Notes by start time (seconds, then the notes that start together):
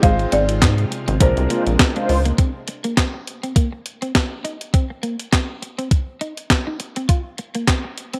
Already playing: G#3
0.02 G#1 C3 G#3 C4 D#4 F4 C5 F5, kick, closed hi-hat
0.19 muted clean electric guitar stroke, closed hi-hat
0.32 G#1 C4 D5, closed hi-hat
0.49 closed hi-hat
0.62 G#2 D#4, kick, snare, clap, closed hi-hat
0.78 closed hi-hat
0.91 muted clean electric guitar stroke, closed hi-hat
1.08 G#1 C4, closed hi-hat
1.20 A#1 G#3 C4 D4 F4 A#4 C5, kick, closed hi-hat
1.37 C2, closed hi-hat
1.50 G#3 A#3 F4 C5, closed hi-hat
1.67 A#1, closed hi-hat
1.79 kick, snare, clap, closed hi-hat
1.96 G#3 D4 F4 C5, closed hi-hat
2.09 C#2, muted clean electric guitar stroke, open hi-hat
2.25 A#3, closed hi-hat
2.38 C4, kick, closed hi-hat
2.68 muted clean electric guitar stroke, closed hi-hat
2.84 A#3, closed hi-hat
2.97 C4, kick, snare, clap, closed hi-hat
3.14 muted clean electric guitar stroke
3.27 closed hi-hat
3.43 C4, closed hi-hat
3.56 A#3, kick, closed hi-hat
3.72 muted clean electric guitar stroke
3.86 closed hi-hat
4.02 C4, closed hi-hat
4.15 kick, snare, clap, closed hi-hat
4.44 D#4, closed hi-hat
4.61 closed hi-hat
4.74 C4, kick, closed hi-hat
4.90 muted clean electric guitar stroke
5.03 A#3, closed hi-hat
5.20 closed hi-hat
5.33 C4, kick, snare, clap, closed hi-hat
5.62 muted clean electric guitar stroke, closed hi-hat
5.78 C4, closed hi-hat
5.91 kick, closed hi-hat
6.21 D#4, closed hi-hat
6.37 closed hi-hat
6.50 kick, snare, clap, closed hi-hat
6.67 D#4
6.80 muted clean electric guitar stroke, closed hi-hat
6.96 C4, closed hi-hat
7.09 F4, kick, closed hi-hat
7.38 muted clean electric guitar stroke, closed hi-hat
7.55 A#3, closed hi-hat
7.67 C4, kick, snare, clap, closed hi-hat
7.84 muted clean electric guitar stroke
7.98 closed hi-hat
8.13 C4, closed hi-hat